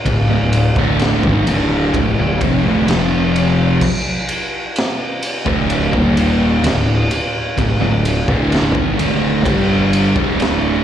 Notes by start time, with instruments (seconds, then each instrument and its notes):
0.05 fingered electric bass D1, distorted electric guitar D2 A2, kick, ride
0.29 fingered electric bass D1, distorted electric guitar D2 A2
0.53 ride
0.76 fingered electric bass D1, distorted electric guitar D2 A2 D3, kick
0.99 snare, ride
1.23 fingered electric bass G#1, distorted electric guitar G#2 D#3, kick
1.46 fingered electric bass D1, distorted electric guitar D2 A2 D3, ride
1.94 fingered electric bass D1, distorted electric guitar D2 A2, kick, ride
2.18 fingered electric bass D1, distorted electric guitar D2 A2
2.41 fingered electric bass F1, distorted electric guitar F2 C3, kick, ride
2.65 fingered electric bass D1, distorted electric guitar D2 A2
2.88 fingered electric bass F1, distorted electric guitar F2 C3 F3, snare, ride
3.36 ride
3.81 kick, crash
4.29 ride
4.76 snare, ride
5.23 ride
5.45 fingered electric bass D1, distorted electric guitar D2 A2 D3, kick
5.70 ride
5.93 fingered electric bass D#1, distorted electric guitar D#2 A#2 D#3, kick
6.17 ride
6.63 fingered electric bass D1, distorted electric guitar D2 A2, snare, ride
7.11 ride
7.57 fingered electric bass D1, distorted electric guitar D2 A2, kick, ride
7.80 fingered electric bass D1, distorted electric guitar D2 A2
8.05 ride
8.28 fingered electric bass D1, distorted electric guitar D2 A2 D3, kick
8.52 snare, ride
8.74 fingered electric bass G#1, distorted electric guitar G#2 D#3, kick
8.98 fingered electric bass D1, distorted electric guitar D2 A2 D3, ride
9.45 fingered electric bass G1, distorted electric guitar G2 D3 G3, kick, ride
9.93 ride
10.16 fingered electric bass D1, distorted electric guitar D2 A2 D3, kick
10.40 snare, ride